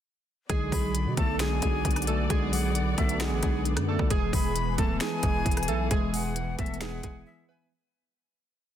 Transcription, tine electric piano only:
0.50 0.93 D3 loud
0.72 1.85 F#3 medium
0.95 1.39 D3 medium
1.17 2.30 B3 medium
1.40 1.84 D3 medium
1.62 2.75 D4 medium
1.85 2.29 D3 medium
2.07 3.20 D5 medium
2.30 2.74 D3 loud
2.53 3.65 F#3 medium
2.75 3.19 D3 medium
2.98 4.11 B3 medium
3.20 3.64 D3 medium
3.43 4.11 D4 medium
3.66 4.11 D3 medium
3.88 4.10 D5 medium
4.11 4.54 E3 loud
4.33 5.46 G#3 medium
4.55 4.99 E3 medium
4.78 5.91 B3 medium
5.01 5.45 E3 medium
5.23 6.36 E4 medium
5.46 5.90 E3 medium
5.69 6.81 E5 medium
5.91 6.35 E3 medium
6.13 7.26 G#3 medium
6.36 6.80 E3 medium
6.59 7.71 B3 medium
6.81 7.25 E3 medium
7.04 7.71 E4 medium
7.26 7.71 E3 medium
7.49 7.71 E5 medium

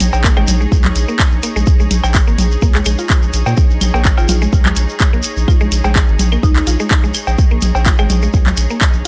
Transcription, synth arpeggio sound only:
0.24 0.29 A#3 medium
0.37 0.41 G#3 loud
0.61 0.63 G#3 medium
1.08 1.15 A#3 medium
1.43 1.48 A#3 medium
1.56 1.60 G#3 loud
1.80 1.82 G#3 medium
2.27 2.34 A#3 medium
2.62 2.67 A#3 medium
2.75 2.79 G#3 loud
2.86 2.94 G#3 medium
2.99 3.05 F4 medium
3.46 3.53 A#3 medium
3.94 4.01 A#3 medium
4.29 4.34 F4 medium
4.42 4.46 G#3 loud
4.66 4.68 G#3 medium
5.13 5.20 A#3 medium
5.48 5.53 F4 medium
5.61 5.65 G#3 loud
5.85 5.87 G#3 medium
6.32 6.39 A#3 medium
6.67 6.72 F4 medium
6.80 6.84 G#3 loud
7.04 7.06 G#3 medium
7.51 7.58 A#3 medium
7.86 7.91 F4 medium
7.99 8.03 G#3 loud
8.23 8.25 G#3 medium
8.70 8.77 A#3 medium

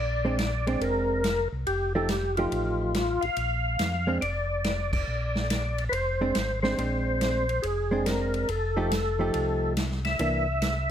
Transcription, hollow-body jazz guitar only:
0.25 0.37 G#3 medium
0.25 0.38 C4 medium
0.25 0.38 D4 medium
0.67 1.21 G#3 medium
0.67 1.22 C4 medium
0.67 1.22 D4 medium
1.95 2.08 F3 medium
1.95 2.08 A3 medium
1.95 2.08 D#4 medium
1.95 2.09 G4 medium
2.38 2.92 F3 medium
2.38 2.92 A3 medium
2.38 2.92 D#4 medium
2.38 2.93 G4 medium
4.07 4.21 G#3 medium
4.07 4.21 C4 medium
4.07 4.21 D4 medium
6.21 6.34 G#3 medium
6.21 6.35 C4 medium
6.21 6.35 D4 medium
6.63 6.76 G#3 medium
6.63 6.78 C4 medium
6.63 6.78 D4 medium
6.78 7.43 G#3 medium
6.78 7.44 C4 medium
6.78 7.44 D4 medium
7.91 8.46 G#3 medium
7.91 8.46 C4 medium
7.91 8.47 D4 medium
8.77 8.90 F3 medium
8.77 8.90 A3 medium
8.77 8.90 D#4 medium
8.77 8.91 G4 medium
9.19 9.74 F3 medium
9.19 9.74 A3 medium
9.19 9.75 D#4 medium
9.19 9.75 G4 medium
10.20 10.45 E3 soft
10.20 10.45 A#3 medium
10.20 10.46 D4 medium

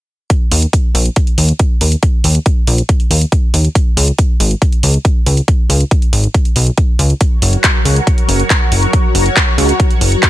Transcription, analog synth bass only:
0.52 0.66 D#2 medium
0.95 1.10 A#1 loud
1.38 1.53 D#2 medium
1.81 1.96 D#2 medium
2.24 2.39 D#2 medium
2.67 2.82 A#1 loud
3.11 3.25 D#2 medium
3.54 3.69 D#2 medium
3.97 4.12 C#2 loud
4.40 4.55 G#1 loud
4.83 4.98 C#2 medium
5.27 5.41 C#2 medium
5.70 5.84 C#2 medium
6.13 6.28 G#1 loud
6.56 6.71 B1 loud
6.99 7.14 C#2 medium
7.42 7.57 F#1 loud
7.85 8.00 C#2 loud
8.28 8.43 F#1 medium
8.72 8.87 F#1 medium
9.15 9.30 F#1 loud
9.58 9.73 C#2 loud
10.01 10.16 F#1 medium

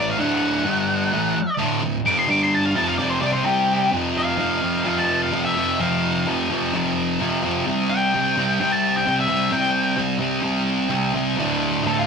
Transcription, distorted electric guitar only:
0.00 0.18 A2 medium
0.00 0.18 E3 loud
0.00 0.18 A3 medium
0.18 0.64 D2 medium
0.18 0.65 A2 loud
0.18 0.64 D3 loud
0.65 1.11 G2 medium
0.65 1.12 D3 loud
0.65 1.12 G3 loud
1.13 1.35 A2 medium
1.13 1.35 E3 medium
1.13 1.36 A3 loud
1.36 muted distorted electric guitar stroke medium
1.58 1.80 D2 loud
1.58 1.81 A2 loud
1.58 1.82 D3 loud
1.82 2.01 D2 medium
1.82 2.01 A2 medium
2.05 2.27 F2 medium
2.05 2.28 C3 medium
2.05 2.28 F3 loud
2.28 2.74 G2 medium
2.28 2.75 D3 loud
2.28 2.75 G3 loud
2.75 2.97 F2 medium
2.75 2.98 C3 medium
2.75 2.98 F3 medium
2.98 3.20 F2 medium
2.98 3.20 C3 loud
2.98 3.22 F3 medium
3.21 3.43 C3 medium
3.21 3.44 G3 medium
3.21 3.45 C4 loud
3.44 3.91 C3 medium
3.44 3.92 G3 loud
3.44 3.92 C4 medium
3.92 4.37 F2 loud
3.92 4.37 C3 loud
3.92 4.39 F3 loud
4.38 4.62 F2 medium
4.38 4.61 C3 medium
4.38 4.63 F3 medium
4.62 4.84 F2 medium
4.62 4.84 C3 medium
4.62 4.85 F3 medium
4.85 5.31 F2 medium
4.85 5.32 C3 medium
4.85 5.32 F3 loud
5.32 5.54 F2 medium
5.32 5.55 C3 medium
5.32 5.56 F3 loud
5.55 5.78 F2 medium
5.55 5.78 C3 medium
5.55 5.79 F3 medium
5.79 6.25 F2 loud
5.79 6.26 C3 loud
5.79 6.26 F3 loud
6.26 6.50 F2 medium
6.26 6.50 C3 medium
6.26 6.50 F3 medium
6.51 6.71 F2 medium
6.51 6.72 C3 medium
6.51 6.74 F3 medium
6.73 7.19 F2 medium
6.73 7.19 C3 loud
6.73 7.20 F3 loud
7.20 7.42 F2 medium
7.20 7.43 C3 medium
7.20 7.44 F3 loud
7.43 7.65 F2 medium
7.43 7.65 C3 medium
7.43 7.66 F3 loud
7.66 8.14 C3 medium
7.66 8.14 G3 loud
7.66 8.15 C4 loud
8.15 8.36 C3 medium
8.15 8.37 G3 medium
8.15 8.38 C4 medium
8.37 8.58 C3 medium
8.37 8.60 G3 medium
8.37 8.60 C4 loud
8.60 9.05 C3 medium
8.60 9.06 G3 loud
8.60 9.06 C4 loud
9.06 9.27 C3 medium
9.06 9.28 G3 medium
9.06 9.29 C4 loud
9.28 9.50 C3 medium
9.28 9.51 G3 loud
9.28 9.51 C4 loud
9.51 9.95 C3 loud
9.51 9.97 G3 loud
9.51 9.97 C4 loud
9.97 10.18 C3 medium
9.97 10.19 G3 medium
9.97 10.19 C4 medium
10.19 10.41 C3 medium
10.19 10.41 G3 medium
10.19 10.42 C4 medium
10.42 10.88 C3 medium
10.42 10.88 G3 loud
10.42 10.89 C4 loud
10.89 11.13 C3 medium
10.89 11.13 G3 loud
10.89 11.14 C4 loud
11.14 11.36 C3 medium
11.14 11.37 G3 medium
11.14 11.37 C4 loud
11.37 11.82 D2 medium
11.37 11.84 A2 loud
11.37 11.86 D3 loud
11.83 12.07 D2 medium
11.83 12.07 A2 medium
11.87 12.04 D3 medium

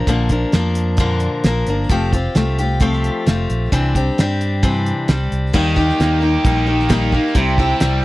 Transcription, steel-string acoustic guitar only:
0.08 0.31 A#2 medium
0.08 0.31 D3 medium
0.08 0.31 F3 medium
0.08 0.31 A#3 medium
0.08 0.30 D4 medium
0.08 0.30 A#4 medium
0.31 0.52 F3 soft
0.31 0.53 A#3 medium
0.31 0.53 D4 medium
0.31 0.54 A#4 soft
0.53 0.99 F3 medium
0.53 0.99 A#3 medium
0.53 0.99 D4 medium
0.53 0.99 A#4 medium
0.99 1.45 A#2 medium
0.99 1.45 D3 medium
0.99 1.43 F3 medium
0.99 1.44 A#3 medium
0.99 1.45 D4 medium
0.99 1.45 A#4 medium
1.44 1.67 F3 medium
1.44 1.68 A#3 medium
1.44 1.67 D4 medium
1.44 1.67 A#4 medium
1.68 1.89 F3 soft
1.68 1.91 A#3 soft
1.68 1.91 D4 soft
1.68 1.91 A#4 soft
1.90 2.13 F3 medium
1.90 2.14 A3 medium
1.90 2.13 C4 medium
1.90 2.12 F4 medium
1.90 2.11 G4 medium
2.13 2.36 C4 soft
2.13 2.36 F4 medium
2.13 2.36 G4 medium
2.36 2.59 A3 medium
2.36 2.59 C4 medium
2.36 2.59 F4 medium
2.36 2.57 G4 medium
2.59 2.81 C4 soft
2.59 2.80 F4 soft
2.59 2.81 G4 medium
2.81 3.27 F3 medium
2.81 3.25 A3 medium
2.81 3.26 C4 medium
2.81 3.26 F4 medium
2.81 3.27 G4 loud
3.26 3.72 A3 medium
3.26 3.72 C4 medium
3.26 3.72 F4 medium
3.26 3.73 G4 medium
3.72 3.95 C3 medium
3.72 3.96 E3 medium
3.72 3.96 G3 medium
3.72 3.95 C4 medium
3.72 3.95 D4 medium
3.72 3.94 G4 medium
3.96 4.17 G3 soft
3.96 4.19 C4 soft
3.96 4.19 D4 soft
3.96 4.18 G4 medium
4.19 4.62 G3 medium
4.19 4.62 C4 medium
4.19 4.62 D4 medium
4.19 4.63 G4 medium
4.63 5.09 C3 medium
4.63 5.09 E3 medium
4.63 5.07 G3 medium
4.63 5.08 C4 medium
4.63 5.09 D4 medium
4.63 5.09 G4 medium
5.08 5.52 G3 medium
5.08 5.54 C4 medium
5.08 5.54 D4 medium
5.08 5.54 G4 medium
5.53 5.76 D#3 medium
5.53 5.77 G3 medium
5.53 5.76 A#3 medium
5.53 5.75 D#4 medium
5.53 5.75 G4 medium
5.76 6.23 D#3 medium
5.76 6.44 G3 medium
5.76 6.22 A#3 medium
5.76 6.21 D#4 medium
5.76 6.21 G4 medium
6.21 6.44 A#3 soft
6.21 6.45 D#4 soft
6.21 6.45 G4 medium
6.45 6.68 G3 medium
6.45 6.67 A#3 medium
6.45 6.66 D#4 medium
6.45 6.65 G4 medium
6.66 6.88 A#3 soft
6.66 6.89 D#4 medium
6.66 6.89 G4 medium
6.89 7.13 D#3 medium
6.89 7.13 G3 medium
6.89 7.13 A#3 medium
6.89 7.12 D#4 medium
6.89 7.11 G4 medium
7.12 7.35 A#3 medium
7.12 7.35 D#4 medium
7.12 7.34 G4 medium
7.35 7.58 C3 medium
7.35 7.58 G3 medium
7.35 7.58 C4 medium
7.35 7.58 E4 medium
7.35 7.58 G4 medium
7.59 8.04 C3 medium
7.59 8.05 G3 medium
7.59 8.04 C4 medium
7.59 8.03 E4 medium
7.59 8.02 G4 medium

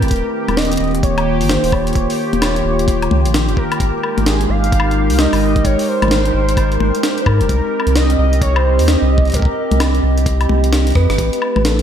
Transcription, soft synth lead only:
0.00 0.58 A#4 loud
0.57 0.79 D#5 loud
0.80 0.90 D#5 loud
1.03 1.46 C#5 loud
1.49 1.74 C5 medium
1.72 2.41 C#5 loud
2.42 3.30 C#5 medium
3.57 4.00 A#4 loud
4.03 4.28 A#4 loud
4.26 4.49 G#4 loud
4.49 5.20 F5 loud
5.19 5.66 D#5 loud
5.65 5.90 C#5 loud
5.88 7.21 C5 loud
7.21 7.28 C5 medium
7.27 7.97 A#4 loud
7.95 8.18 D#5 loud
8.19 8.40 D#5 loud
8.42 8.57 C#5 loud
8.56 8.89 C5 loud
8.88 9.35 D#5 loud
9.34 9.80 A#4 medium
10.95 11.66 B4 loud
11.65 11.82 A4 loud

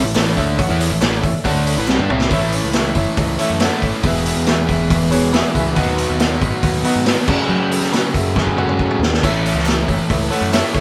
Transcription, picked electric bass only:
0.05 0.15 A1 medium
0.15 0.36 A1 medium
0.37 0.57 D2 medium
0.59 0.69 A1 medium
0.70 0.90 E2 loud
0.91 1.01 A1 medium
1.01 1.22 A1 medium
1.23 1.34 A1 medium
1.35 muted picked electric bass stroke soft
1.45 1.75 D2 loud
1.78 1.88 A1 medium
1.89 1.98 C2 medium
1.99 2.09 G2 loud
2.10 2.30 C2 medium
2.31 2.60 A1 medium
2.64 2.92 C#2 medium
2.95 3.05 F#1 medium
3.18 3.37 C#2 medium
3.50 3.69 F#2 medium
3.82 3.92 A1 medium
4.03 4.32 E1 loud
4.36 4.65 E2 loud
4.69 4.88 E1 medium
4.90 5.19 E1 medium
5.23 5.42 E1 medium
5.55 5.74 C#2 medium
5.77 6.05 D#2 loud
6.10 6.38 D#2 medium
6.41 6.51 G#1 medium
6.63 6.82 D#2 medium
6.96 7.15 G#2 medium
7.28 7.38 F#2 medium
7.49 7.78 F#3 loud
7.81 8.10 F#3 medium
8.14 8.34 F#2 medium
8.36 8.65 F#2 medium
8.67 8.87 F#2 medium
8.99 9.19 D#2 loud
9.23 9.52 A1 loud
9.54 9.83 C#2 medium
9.88 9.98 F#1 loud
10.10 10.29 C#2 medium
10.41 10.61 F#2 medium
10.75 10.80 A1 medium

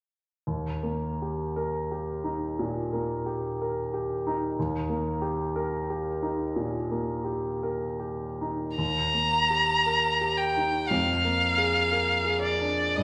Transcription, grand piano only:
0.47 2.52 D#2 soft
0.83 1.41 A#3 soft
1.22 1.77 G4 soft
1.56 2.10 A#4 soft
1.91 2.44 G4 soft
2.24 2.77 D#4 soft
2.59 3.12 A#2 soft
2.93 3.47 A#3 soft
3.26 3.80 G4 soft
3.62 4.14 A#4 soft
3.94 4.45 G4 soft
4.27 4.77 D#4 soft
4.59 6.51 D#2 soft
4.89 5.41 A#3 soft
5.22 5.74 G4 soft
5.56 6.08 A#4 soft
5.90 6.42 G4 soft
6.22 6.75 D#4 soft
6.56 7.10 A#2 soft
6.91 7.47 A#3 soft
7.25 7.84 G4 soft
7.63 8.25 A#4 soft
8.00 8.63 G4 soft
8.41 8.78 D#4 soft
8.78 10.86 D#2 soft
9.14 9.71 A#3 soft
9.50 10.07 G4 soft
9.86 10.42 A#4 soft
10.21 10.77 G4 soft
10.57 10.91 D#4 soft
10.91 12.94 F2 soft
11.24 11.79 A#3 soft
11.58 12.13 G#4 soft
11.92 12.47 A#4 soft
12.25 12.82 G#4 soft
12.61 12.97 D4 soft
12.97 13.03 G2 soft

